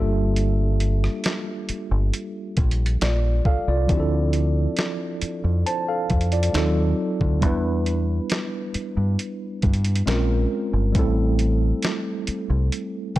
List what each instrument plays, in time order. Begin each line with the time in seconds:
Already playing: fingered electric bass G1, tine electric piano G3 A#3 D4 F4 G4 A4 E5
0.36 closed hi-hat
0.80 closed hi-hat
1.04 cross-stick
1.24 snare, closed hi-hat
1.69 muted fingered electric bass stroke, closed hi-hat
1.91 fingered electric bass G1
2.14 closed hi-hat
2.57 fingered electric bass A#1, kick, closed hi-hat
2.71 closed hi-hat
2.86 closed hi-hat
3.01 fingered electric bass A#1, tine electric piano F4 D5, snare, closed hi-hat
3.45 tine electric piano A4 F5, kick
3.68 fingered electric bass C2, tine electric piano F4 D5
3.87 fingered electric bass D2, tine electric piano F3 C4 D4, kick, closed hi-hat
3.92 tine electric piano E4 G4
4.00 tine electric piano A4
4.33 closed hi-hat
4.77 snare, closed hi-hat
5.21 muted fingered electric bass stroke, closed hi-hat
5.44 fingered electric bass F2
5.66 tine electric piano C5 A5, closed hi-hat
5.88 tine electric piano A4 F5
6.10 fingered electric bass F2, kick, closed hi-hat
6.21 closed hi-hat
6.32 tine electric piano F4 D5, closed hi-hat
6.43 closed hi-hat
6.53 fingered electric bass D#2, tine electric piano F#3 C4 D#4 F4 A4, snare, closed hi-hat
7.21 fingered electric bass D2, kick
7.40 fingered electric bass E2, tine electric piano G3 B3 D4, kick, closed hi-hat
7.45 tine electric piano E4 B4
7.86 closed hi-hat
8.30 snare, closed hi-hat
8.74 muted fingered electric bass stroke, closed hi-hat
8.97 fingered electric bass G2
9.19 closed hi-hat
9.62 fingered electric bass G2, kick, closed hi-hat
9.73 closed hi-hat
9.85 closed hi-hat
9.96 closed hi-hat
10.06 fingered electric bass A#1, tine electric piano G#3 C4 C#4 F4 A#4, snare, closed hi-hat
10.73 fingered electric bass G1
10.92 fingered electric bass A1, tine electric piano G3 A3 C4, kick, closed hi-hat
10.97 tine electric piano E4 A4
11.39 closed hi-hat
11.83 snare, closed hi-hat
12.27 muted fingered electric bass stroke, closed hi-hat
12.50 fingered electric bass C2
12.72 closed hi-hat
13.16 tine electric piano G5, closed hi-hat